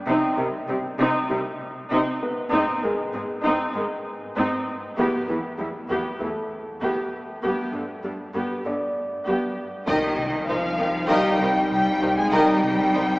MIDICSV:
0, 0, Header, 1, 12, 480
1, 0, Start_track
1, 0, Tempo, 612245
1, 61, Time_signature, 4, 2, 24, 8
1, 10341, End_track
2, 0, Start_track
2, 0, Title_t, "Violin section"
2, 0, Program_c, 0, 48
2, 7746, Note_on_c, 0, 75, 50
2, 8193, Note_off_c, 0, 75, 0
2, 8222, Note_on_c, 0, 77, 49
2, 8699, Note_on_c, 0, 79, 57
2, 8702, Note_off_c, 0, 77, 0
2, 9171, Note_off_c, 0, 79, 0
2, 9186, Note_on_c, 0, 79, 56
2, 9536, Note_off_c, 0, 79, 0
2, 9552, Note_on_c, 0, 80, 51
2, 9665, Note_off_c, 0, 80, 0
2, 9673, Note_on_c, 0, 79, 59
2, 10341, Note_off_c, 0, 79, 0
2, 10341, End_track
3, 0, Start_track
3, 0, Title_t, "Grand piano"
3, 0, Program_c, 1, 0
3, 0, Control_c, 1, 64, 127
3, 0, Note_on_c, 1, 74, 44
3, 0, Note_on_c, 1, 79, 32
3, 76, Control_c, 1, 64, 0
3, 203, Control_c, 1, 64, 127
3, 269, Note_off_c, 1, 74, 0
3, 1234, Note_off_c, 1, 79, 0
3, 1746, Note_on_c, 1, 71, 37
3, 1747, Note_on_c, 1, 59, 33
3, 1997, Control_c, 1, 64, 0
3, 2108, Control_c, 1, 64, 127
3, 2223, Note_on_c, 1, 68, 32
3, 3152, Note_off_c, 1, 71, 0
3, 3153, Note_off_c, 1, 59, 0
3, 3631, Note_off_c, 1, 68, 0
3, 3915, Control_c, 1, 64, 0
3, 4031, Control_c, 1, 64, 127
3, 4862, Note_on_c, 1, 57, 29
3, 4862, Note_on_c, 1, 69, 33
3, 5835, Control_c, 1, 64, 0
3, 5950, Control_c, 1, 64, 127
3, 6270, Note_off_c, 1, 57, 0
3, 6270, Note_off_c, 1, 69, 0
3, 6791, Note_on_c, 1, 74, 31
3, 7715, Note_off_c, 1, 74, 0
3, 7757, Control_c, 1, 64, 0
3, 7877, Control_c, 1, 64, 127
3, 8706, Note_on_c, 1, 77, 43
3, 9663, Note_on_c, 1, 82, 41
3, 10112, Note_off_c, 1, 77, 0
3, 10341, Note_off_c, 1, 82, 0
3, 10341, End_track
4, 0, Start_track
4, 0, Title_t, "Violin section"
4, 0, Program_c, 2, 48
4, 7743, Note_on_c, 2, 75, 50
4, 7746, Note_on_c, 2, 67, 42
4, 7966, Note_off_c, 2, 75, 0
4, 7967, Note_off_c, 2, 67, 0
4, 8227, Note_on_c, 2, 72, 33
4, 8228, Note_on_c, 2, 63, 33
4, 8289, Note_off_c, 2, 72, 0
4, 8291, Note_off_c, 2, 63, 0
4, 8462, Note_on_c, 2, 60, 28
4, 8462, Note_on_c, 2, 67, 34
4, 8525, Note_off_c, 2, 60, 0
4, 8525, Note_off_c, 2, 67, 0
4, 8699, Note_on_c, 2, 75, 53
4, 8700, Note_on_c, 2, 67, 48
4, 8923, Note_off_c, 2, 75, 0
4, 8924, Note_off_c, 2, 67, 0
4, 8941, Note_on_c, 2, 60, 37
4, 8941, Note_on_c, 2, 67, 34
4, 9003, Note_off_c, 2, 60, 0
4, 9004, Note_off_c, 2, 67, 0
4, 9421, Note_on_c, 2, 60, 34
4, 9421, Note_on_c, 2, 67, 38
4, 9483, Note_off_c, 2, 60, 0
4, 9484, Note_off_c, 2, 67, 0
4, 9664, Note_on_c, 2, 75, 46
4, 9668, Note_on_c, 2, 67, 44
4, 9886, Note_off_c, 2, 75, 0
4, 9888, Note_off_c, 2, 67, 0
4, 10150, Note_on_c, 2, 72, 34
4, 10152, Note_on_c, 2, 63, 33
4, 10213, Note_off_c, 2, 72, 0
4, 10215, Note_off_c, 2, 63, 0
4, 10341, End_track
5, 0, Start_track
5, 0, Title_t, "French horn section"
5, 0, Program_c, 3, 60
5, 7742, Note_on_c, 3, 63, 45
5, 7743, Note_on_c, 3, 60, 42
5, 10341, Note_off_c, 3, 60, 0
5, 10341, Note_off_c, 3, 63, 0
5, 10341, End_track
6, 0, Start_track
6, 0, Title_t, "Viola section"
6, 0, Program_c, 4, 48
6, 61, Note_on_c, 4, 63, 53
6, 62, Note_on_c, 4, 60, 50
6, 284, Note_off_c, 4, 63, 0
6, 285, Note_off_c, 4, 60, 0
6, 297, Note_on_c, 4, 51, 37
6, 297, Note_on_c, 4, 55, 36
6, 359, Note_off_c, 4, 51, 0
6, 359, Note_off_c, 4, 55, 0
6, 540, Note_on_c, 4, 55, 45
6, 541, Note_on_c, 4, 60, 44
6, 603, Note_off_c, 4, 55, 0
6, 604, Note_off_c, 4, 60, 0
6, 781, Note_on_c, 4, 63, 59
6, 782, Note_on_c, 4, 60, 52
6, 1005, Note_off_c, 4, 60, 0
6, 1005, Note_off_c, 4, 63, 0
6, 1020, Note_on_c, 4, 51, 40
6, 1020, Note_on_c, 4, 55, 44
6, 1082, Note_off_c, 4, 55, 0
6, 1083, Note_off_c, 4, 51, 0
6, 1498, Note_on_c, 4, 60, 49
6, 1499, Note_on_c, 4, 63, 54
6, 1723, Note_off_c, 4, 60, 0
6, 1723, Note_off_c, 4, 63, 0
6, 1978, Note_on_c, 4, 60, 51
6, 1979, Note_on_c, 4, 63, 60
6, 2203, Note_off_c, 4, 60, 0
6, 2203, Note_off_c, 4, 63, 0
6, 2220, Note_on_c, 4, 51, 32
6, 2221, Note_on_c, 4, 56, 35
6, 2283, Note_off_c, 4, 51, 0
6, 2283, Note_off_c, 4, 56, 0
6, 2459, Note_on_c, 4, 56, 42
6, 2461, Note_on_c, 4, 60, 38
6, 2522, Note_off_c, 4, 56, 0
6, 2524, Note_off_c, 4, 60, 0
6, 2697, Note_on_c, 4, 60, 50
6, 2697, Note_on_c, 4, 63, 62
6, 2922, Note_off_c, 4, 60, 0
6, 2922, Note_off_c, 4, 63, 0
6, 2937, Note_on_c, 4, 56, 41
6, 2940, Note_on_c, 4, 51, 40
6, 3000, Note_off_c, 4, 56, 0
6, 3002, Note_off_c, 4, 51, 0
6, 3420, Note_on_c, 4, 60, 51
6, 3421, Note_on_c, 4, 63, 54
6, 3644, Note_off_c, 4, 60, 0
6, 3645, Note_off_c, 4, 63, 0
6, 3905, Note_on_c, 4, 67, 53
6, 3906, Note_on_c, 4, 59, 53
6, 4127, Note_off_c, 4, 59, 0
6, 4127, Note_off_c, 4, 67, 0
6, 4144, Note_on_c, 4, 52, 30
6, 4145, Note_on_c, 4, 59, 31
6, 4207, Note_off_c, 4, 52, 0
6, 4207, Note_off_c, 4, 59, 0
6, 4381, Note_on_c, 4, 55, 33
6, 4385, Note_on_c, 4, 64, 34
6, 4444, Note_off_c, 4, 55, 0
6, 4447, Note_off_c, 4, 64, 0
6, 4622, Note_on_c, 4, 67, 44
6, 4624, Note_on_c, 4, 59, 45
6, 4845, Note_off_c, 4, 67, 0
6, 4846, Note_off_c, 4, 59, 0
6, 4862, Note_on_c, 4, 52, 34
6, 4863, Note_on_c, 4, 59, 38
6, 4924, Note_off_c, 4, 52, 0
6, 4925, Note_off_c, 4, 59, 0
6, 5344, Note_on_c, 4, 59, 42
6, 5345, Note_on_c, 4, 67, 46
6, 5566, Note_off_c, 4, 59, 0
6, 5566, Note_off_c, 4, 67, 0
6, 5823, Note_on_c, 4, 59, 45
6, 5824, Note_on_c, 4, 67, 40
6, 6046, Note_off_c, 4, 59, 0
6, 6046, Note_off_c, 4, 67, 0
6, 6064, Note_on_c, 4, 59, 27
6, 6065, Note_on_c, 4, 50, 28
6, 6127, Note_off_c, 4, 59, 0
6, 6128, Note_off_c, 4, 50, 0
6, 6306, Note_on_c, 4, 55, 31
6, 6306, Note_on_c, 4, 62, 28
6, 6368, Note_off_c, 4, 55, 0
6, 6368, Note_off_c, 4, 62, 0
6, 6548, Note_on_c, 4, 59, 40
6, 6548, Note_on_c, 4, 67, 37
6, 6768, Note_off_c, 4, 59, 0
6, 6768, Note_off_c, 4, 67, 0
6, 6784, Note_on_c, 4, 50, 30
6, 6786, Note_on_c, 4, 59, 30
6, 6847, Note_off_c, 4, 50, 0
6, 6849, Note_off_c, 4, 59, 0
6, 7263, Note_on_c, 4, 67, 40
6, 7264, Note_on_c, 4, 59, 38
6, 7485, Note_off_c, 4, 67, 0
6, 7486, Note_off_c, 4, 59, 0
6, 7747, Note_on_c, 4, 51, 43
6, 7747, Note_on_c, 4, 63, 43
6, 7967, Note_off_c, 4, 51, 0
6, 7968, Note_off_c, 4, 63, 0
6, 8222, Note_on_c, 4, 63, 33
6, 8224, Note_on_c, 4, 51, 32
6, 8285, Note_off_c, 4, 63, 0
6, 8286, Note_off_c, 4, 51, 0
6, 8461, Note_on_c, 4, 63, 31
6, 8462, Note_on_c, 4, 51, 33
6, 8524, Note_off_c, 4, 63, 0
6, 8525, Note_off_c, 4, 51, 0
6, 8698, Note_on_c, 4, 51, 49
6, 8699, Note_on_c, 4, 63, 45
6, 8923, Note_off_c, 4, 51, 0
6, 8923, Note_off_c, 4, 63, 0
6, 8942, Note_on_c, 4, 51, 40
6, 8942, Note_on_c, 4, 63, 35
6, 9004, Note_off_c, 4, 51, 0
6, 9004, Note_off_c, 4, 63, 0
6, 9423, Note_on_c, 4, 63, 35
6, 9424, Note_on_c, 4, 51, 38
6, 9486, Note_off_c, 4, 63, 0
6, 9487, Note_off_c, 4, 51, 0
6, 9668, Note_on_c, 4, 63, 50
6, 9669, Note_on_c, 4, 51, 45
6, 9888, Note_off_c, 4, 63, 0
6, 9889, Note_off_c, 4, 51, 0
6, 10141, Note_on_c, 4, 51, 36
6, 10142, Note_on_c, 4, 63, 37
6, 10204, Note_off_c, 4, 51, 0
6, 10205, Note_off_c, 4, 63, 0
6, 10341, End_track
7, 0, Start_track
7, 0, Title_t, "Cello section"
7, 0, Program_c, 5, 48
7, 57, Note_on_c, 5, 48, 55
7, 120, Note_off_c, 5, 48, 0
7, 300, Note_on_c, 5, 48, 37
7, 363, Note_off_c, 5, 48, 0
7, 537, Note_on_c, 5, 48, 39
7, 600, Note_off_c, 5, 48, 0
7, 781, Note_on_c, 5, 48, 59
7, 844, Note_off_c, 5, 48, 0
7, 1020, Note_on_c, 5, 48, 40
7, 1082, Note_off_c, 5, 48, 0
7, 1504, Note_on_c, 5, 48, 55
7, 1567, Note_off_c, 5, 48, 0
7, 1984, Note_on_c, 5, 44, 55
7, 2046, Note_off_c, 5, 44, 0
7, 2225, Note_on_c, 5, 44, 37
7, 2287, Note_off_c, 5, 44, 0
7, 2464, Note_on_c, 5, 44, 39
7, 2526, Note_off_c, 5, 44, 0
7, 2702, Note_on_c, 5, 44, 53
7, 2765, Note_off_c, 5, 44, 0
7, 2941, Note_on_c, 5, 44, 38
7, 3003, Note_off_c, 5, 44, 0
7, 3427, Note_on_c, 5, 44, 54
7, 3490, Note_off_c, 5, 44, 0
7, 3906, Note_on_c, 5, 40, 56
7, 3969, Note_off_c, 5, 40, 0
7, 4148, Note_on_c, 5, 40, 38
7, 4210, Note_off_c, 5, 40, 0
7, 4386, Note_on_c, 5, 40, 37
7, 4449, Note_off_c, 5, 40, 0
7, 4628, Note_on_c, 5, 40, 52
7, 4691, Note_off_c, 5, 40, 0
7, 4873, Note_on_c, 5, 40, 33
7, 4936, Note_off_c, 5, 40, 0
7, 5351, Note_on_c, 5, 40, 50
7, 5414, Note_off_c, 5, 40, 0
7, 5830, Note_on_c, 5, 43, 43
7, 5893, Note_off_c, 5, 43, 0
7, 6068, Note_on_c, 5, 43, 29
7, 6131, Note_off_c, 5, 43, 0
7, 6308, Note_on_c, 5, 43, 30
7, 6370, Note_off_c, 5, 43, 0
7, 6545, Note_on_c, 5, 43, 39
7, 6607, Note_off_c, 5, 43, 0
7, 6788, Note_on_c, 5, 43, 29
7, 6851, Note_off_c, 5, 43, 0
7, 7270, Note_on_c, 5, 43, 41
7, 7332, Note_off_c, 5, 43, 0
7, 7748, Note_on_c, 5, 51, 44
7, 8194, Note_off_c, 5, 51, 0
7, 8228, Note_on_c, 5, 53, 43
7, 8695, Note_off_c, 5, 53, 0
7, 8704, Note_on_c, 5, 55, 46
7, 9180, Note_off_c, 5, 55, 0
7, 9190, Note_on_c, 5, 55, 49
7, 9539, Note_off_c, 5, 55, 0
7, 9548, Note_on_c, 5, 56, 47
7, 9665, Note_off_c, 5, 56, 0
7, 9673, Note_on_c, 5, 55, 51
7, 10341, Note_off_c, 5, 55, 0
7, 10341, End_track
8, 0, Start_track
8, 0, Title_t, "Analog synth bass"
8, 0, Program_c, 6, 38
8, 7745, Note_on_c, 6, 36, 71
8, 7888, Note_off_c, 6, 36, 0
8, 7985, Note_on_c, 6, 48, 49
8, 8128, Note_off_c, 6, 48, 0
8, 8223, Note_on_c, 6, 36, 54
8, 8367, Note_off_c, 6, 36, 0
8, 8463, Note_on_c, 6, 36, 50
8, 8607, Note_off_c, 6, 36, 0
8, 8704, Note_on_c, 6, 36, 65
8, 8847, Note_off_c, 6, 36, 0
8, 8944, Note_on_c, 6, 48, 44
8, 9087, Note_off_c, 6, 48, 0
8, 9187, Note_on_c, 6, 48, 51
8, 9329, Note_off_c, 6, 48, 0
8, 9426, Note_on_c, 6, 36, 50
8, 9569, Note_off_c, 6, 36, 0
8, 9663, Note_on_c, 6, 36, 70
8, 9807, Note_off_c, 6, 36, 0
8, 9904, Note_on_c, 6, 48, 50
8, 10047, Note_off_c, 6, 48, 0
8, 10145, Note_on_c, 6, 36, 53
8, 10288, Note_off_c, 6, 36, 0
8, 10341, End_track
9, 0, Start_track
9, 0, Title_t, "Double bass section"
9, 0, Program_c, 7, 48
9, 7749, Note_on_c, 7, 36, 45
9, 7811, Note_off_c, 7, 36, 0
9, 8225, Note_on_c, 7, 36, 34
9, 8288, Note_off_c, 7, 36, 0
9, 8462, Note_on_c, 7, 36, 35
9, 8525, Note_off_c, 7, 36, 0
9, 8700, Note_on_c, 7, 36, 47
9, 8762, Note_off_c, 7, 36, 0
9, 8942, Note_on_c, 7, 36, 36
9, 9004, Note_off_c, 7, 36, 0
9, 9420, Note_on_c, 7, 36, 37
9, 9483, Note_off_c, 7, 36, 0
9, 9660, Note_on_c, 7, 36, 49
9, 9723, Note_off_c, 7, 36, 0
9, 10140, Note_on_c, 7, 36, 37
9, 10203, Note_off_c, 7, 36, 0
9, 10341, End_track
10, 0, Start_track
10, 0, Title_t, "Sub bass"
10, 0, Program_c, 8, 38
10, 7746, Note_on_c, 8, 36, 52
10, 10341, Note_off_c, 8, 36, 0
10, 10341, End_track
11, 0, Start_track
11, 0, Title_t, "Impact"
11, 0, Program_c, 10, 103
11, 7742, Note_on_c, 10, 60, 42
11, 9662, Note_off_c, 10, 60, 0
11, 10341, End_track
12, 0, Start_track
12, 0, Title_t, "Taiko and cinematic ensemble drums"
12, 7745, Note_on_c, 9, 41, 44
12, 7823, Note_off_c, 9, 41, 0
12, 8463, Note_on_c, 9, 41, 32
12, 8542, Note_off_c, 9, 41, 0
12, 10341, End_track
0, 0, End_of_file